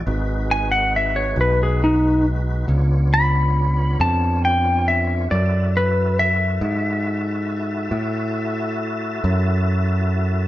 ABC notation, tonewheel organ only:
X:1
M:12/8
L:1/8
Q:3/8=46
K:F#m
V:1 name="Tonewheel organ"
[G,^DFB]6 [B,=D^Ec]6 | [EFAe]12 |]